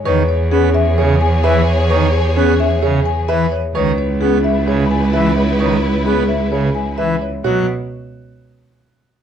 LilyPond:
<<
  \new Staff \with { instrumentName = "Marimba" } { \time 4/4 \key cis \dorian \tempo 4 = 130 b'8 cis''8 gis'8 e''8 cis''8 gis''8 e''8 cis''8 | b'8 cis''8 gis'8 e''8 cis''8 gis''8 e''8 cis''8 | b'8 cis''8 gis'8 e''8 cis''8 gis''8 e''8 cis''8 | b'8 cis''8 gis'8 e''8 cis''8 gis''8 e''8 cis''8 |
cis''8 r2. r8 | }
  \new Staff \with { instrumentName = "Violin section" } { \time 4/4 \key cis \dorian <gis' cis''>1~ | <gis' cis''>2.~ <gis' cis''>8 r8 | <e' b'>1~ | <e' b'>2.~ <e' b'>8 r8 |
r1 | }
  \new Staff \with { instrumentName = "Grand piano" } { \time 4/4 \key cis \dorian cis''8 r8 cis'8 r8 gis'8 r8 b'8 r8 | cis''8 r8 cis'8 r8 gis'8 r8 b'8 r8 | cis''8 r8 cis'8 r8 gis'8 r8 b'8 r8 | cis''8 r8 cis'8 r8 gis'8 r8 b'8 r8 |
fis'8 r2. r8 | }
  \new Staff \with { instrumentName = "Pipe organ" } { \clef bass \time 4/4 \key cis \dorian dis8 r8 b8 r8 cis8 r8 e8 r8 | dis8 r8 b8 r8 cis8 r8 e8 r8 | dis8 r8 b8 r8 cis8 r8 e8 r8 | dis8 r8 b8 r8 cis8 r8 e8 r8 |
fis8 r2. r8 | }
  \new Staff \with { instrumentName = "Cello" } { \clef bass \time 4/4 \key cis \dorian e,1~ | e,1 | cis,1~ | cis,1 |
b,8 r2. r8 | }
>>